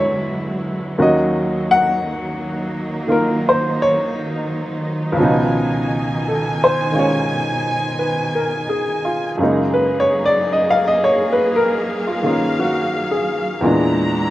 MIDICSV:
0, 0, Header, 1, 3, 480
1, 0, Start_track
1, 0, Key_signature, 6, "major"
1, 0, Tempo, 1048951
1, 449, Time_signature, 4, 2, 24, 8
1, 2849, Tempo, 1058201
1, 6512, End_track
2, 0, Start_track
2, 0, Title_t, "Upright piano"
2, 0, Program_c, 0, 0
2, 0, Control_c, 0, 64, 127
2, 0, Note_on_c, 0, 40, 45
2, 0, Note_on_c, 0, 52, 40
2, 0, Note_on_c, 0, 56, 43
2, 0, Note_on_c, 0, 61, 40
2, 0, Note_on_c, 0, 62, 41
2, 0, Note_on_c, 0, 66, 46
2, 0, Note_on_c, 0, 73, 65
2, 0, Note_on_c, 0, 76, 85
2, 439, Note_off_c, 0, 40, 0
2, 443, Note_off_c, 0, 52, 0
2, 443, Note_off_c, 0, 73, 0
2, 448, Note_off_c, 0, 61, 0
2, 448, Note_on_c, 0, 39, 47
2, 449, Note_off_c, 0, 56, 0
2, 450, Note_off_c, 0, 66, 0
2, 451, Note_on_c, 0, 51, 41
2, 452, Note_on_c, 0, 54, 40
2, 454, Note_on_c, 0, 61, 43
2, 456, Control_c, 0, 64, 0
2, 456, Note_on_c, 0, 66, 53
2, 458, Note_off_c, 0, 76, 0
2, 459, Note_off_c, 0, 62, 0
2, 467, Note_on_c, 0, 75, 65
2, 524, Control_c, 0, 64, 127
2, 767, Note_off_c, 0, 75, 0
2, 783, Note_on_c, 0, 78, 87
2, 875, Note_off_c, 0, 78, 0
2, 1397, Note_off_c, 0, 51, 0
2, 1404, Note_on_c, 0, 51, 39
2, 1411, Note_on_c, 0, 58, 37
2, 1418, Note_on_c, 0, 65, 42
2, 1427, Note_on_c, 0, 70, 71
2, 1571, Note_off_c, 0, 70, 0
2, 1596, Note_on_c, 0, 72, 78
2, 1736, Note_off_c, 0, 72, 0
2, 1749, Note_on_c, 0, 73, 85
2, 2345, Note_on_c, 0, 37, 58
2, 2355, Note_on_c, 0, 49, 52
2, 2365, Note_off_c, 0, 51, 0
2, 2366, Note_off_c, 0, 39, 0
2, 2368, Note_off_c, 0, 54, 0
2, 2369, Note_off_c, 0, 58, 0
2, 2369, Note_off_c, 0, 61, 0
2, 2369, Note_on_c, 0, 53, 52
2, 2370, Note_off_c, 0, 66, 0
2, 2372, Control_c, 0, 64, 0
2, 2373, Note_off_c, 0, 65, 0
2, 2381, Note_on_c, 0, 47, 53
2, 2393, Note_on_c, 0, 63, 63
2, 2459, Control_c, 0, 64, 127
2, 2467, Note_off_c, 0, 73, 0
2, 2874, Note_on_c, 0, 69, 50
2, 3016, Note_off_c, 0, 69, 0
2, 3036, Note_on_c, 0, 72, 70
2, 3164, Note_on_c, 0, 51, 41
2, 3168, Note_on_c, 0, 56, 33
2, 3172, Note_on_c, 0, 61, 36
2, 3177, Note_off_c, 0, 72, 0
2, 3177, Note_on_c, 0, 65, 40
2, 3196, Note_on_c, 0, 73, 67
2, 3649, Note_on_c, 0, 71, 40
2, 3813, Note_on_c, 0, 70, 44
2, 3897, Note_off_c, 0, 71, 0
2, 3910, Note_off_c, 0, 73, 0
2, 3968, Note_on_c, 0, 68, 44
2, 4111, Note_off_c, 0, 70, 0
2, 4122, Note_off_c, 0, 65, 0
2, 4129, Note_on_c, 0, 65, 48
2, 4217, Note_off_c, 0, 68, 0
2, 4278, Note_off_c, 0, 37, 0
2, 4278, Note_off_c, 0, 49, 0
2, 4278, Note_on_c, 0, 42, 47
2, 4283, Note_off_c, 0, 56, 0
2, 4285, Note_on_c, 0, 49, 42
2, 4289, Note_off_c, 0, 51, 0
2, 4290, Note_on_c, 0, 56, 41
2, 4291, Note_off_c, 0, 53, 0
2, 4293, Note_off_c, 0, 61, 0
2, 4295, Control_c, 0, 64, 0
2, 4295, Note_on_c, 0, 58, 40
2, 4296, Note_off_c, 0, 47, 0
2, 4297, Note_off_c, 0, 63, 0
2, 4304, Note_on_c, 0, 63, 50
2, 4377, Note_off_c, 0, 65, 0
2, 4379, Control_c, 0, 64, 127
2, 4441, Note_on_c, 0, 71, 70
2, 4560, Note_on_c, 0, 73, 77
2, 4599, Note_off_c, 0, 71, 0
2, 4663, Note_off_c, 0, 73, 0
2, 4677, Note_on_c, 0, 74, 80
2, 4762, Note_off_c, 0, 74, 0
2, 4799, Note_on_c, 0, 75, 68
2, 4881, Note_on_c, 0, 77, 79
2, 4889, Note_off_c, 0, 75, 0
2, 4932, Note_off_c, 0, 77, 0
2, 4958, Note_on_c, 0, 75, 77
2, 5032, Note_on_c, 0, 73, 80
2, 5099, Note_off_c, 0, 75, 0
2, 5138, Note_off_c, 0, 73, 0
2, 5161, Note_on_c, 0, 71, 68
2, 5244, Note_off_c, 0, 71, 0
2, 5269, Note_on_c, 0, 70, 80
2, 5453, Note_off_c, 0, 70, 0
2, 5500, Note_on_c, 0, 65, 44
2, 5569, Note_off_c, 0, 58, 0
2, 5570, Note_on_c, 0, 51, 43
2, 5575, Note_on_c, 0, 58, 37
2, 5579, Note_off_c, 0, 65, 0
2, 5579, Note_on_c, 0, 61, 38
2, 5585, Note_on_c, 0, 65, 44
2, 5737, Note_on_c, 0, 66, 47
2, 5973, Note_on_c, 0, 68, 48
2, 6113, Note_off_c, 0, 66, 0
2, 6197, Note_on_c, 0, 40, 51
2, 6203, Note_off_c, 0, 42, 0
2, 6203, Note_off_c, 0, 56, 0
2, 6203, Note_on_c, 0, 52, 52
2, 6206, Note_off_c, 0, 49, 0
2, 6209, Note_off_c, 0, 51, 0
2, 6210, Note_on_c, 0, 56, 49
2, 6212, Note_off_c, 0, 58, 0
2, 6213, Note_on_c, 0, 46, 51
2, 6214, Note_off_c, 0, 61, 0
2, 6215, Control_c, 0, 64, 0
2, 6216, Note_off_c, 0, 63, 0
2, 6217, Note_off_c, 0, 65, 0
2, 6219, Note_on_c, 0, 62, 60
2, 6297, Control_c, 0, 64, 127
2, 6311, Note_off_c, 0, 68, 0
2, 6512, Note_off_c, 0, 40, 0
2, 6512, Note_off_c, 0, 46, 0
2, 6512, Note_off_c, 0, 52, 0
2, 6512, Note_off_c, 0, 56, 0
2, 6512, Note_off_c, 0, 62, 0
2, 6512, End_track
3, 0, Start_track
3, 0, Title_t, "String section"
3, 0, Program_c, 1, 48
3, 0, Note_on_c, 1, 50, 70
3, 0, Note_on_c, 1, 54, 68
3, 0, Note_on_c, 1, 56, 57
3, 0, Note_on_c, 1, 64, 59
3, 435, Note_off_c, 1, 56, 0
3, 437, Note_off_c, 1, 50, 0
3, 439, Note_off_c, 1, 64, 0
3, 440, Note_on_c, 1, 63, 61
3, 445, Note_on_c, 1, 51, 71
3, 445, Note_on_c, 1, 58, 62
3, 2346, Note_off_c, 1, 54, 0
3, 2346, Note_off_c, 1, 58, 0
3, 2359, Note_on_c, 1, 47, 67
3, 2362, Note_on_c, 1, 80, 72
3, 4267, Note_off_c, 1, 47, 0
3, 4267, Note_off_c, 1, 63, 0
3, 4269, Note_off_c, 1, 51, 0
3, 4269, Note_off_c, 1, 80, 0
3, 4290, Note_on_c, 1, 68, 77
3, 4292, Note_on_c, 1, 54, 66
3, 4292, Note_on_c, 1, 63, 59
3, 4296, Note_on_c, 1, 58, 64
3, 5243, Note_off_c, 1, 63, 0
3, 5247, Note_on_c, 1, 77, 60
3, 6190, Note_off_c, 1, 68, 0
3, 6192, Note_off_c, 1, 54, 0
3, 6194, Note_off_c, 1, 58, 0
3, 6197, Note_off_c, 1, 77, 0
3, 6208, Note_on_c, 1, 62, 64
3, 6209, Note_on_c, 1, 64, 64
3, 6212, Note_on_c, 1, 56, 69
3, 6214, Note_on_c, 1, 82, 75
3, 6512, Note_off_c, 1, 56, 0
3, 6512, Note_off_c, 1, 62, 0
3, 6512, Note_off_c, 1, 64, 0
3, 6512, Note_off_c, 1, 82, 0
3, 6512, End_track
0, 0, End_of_file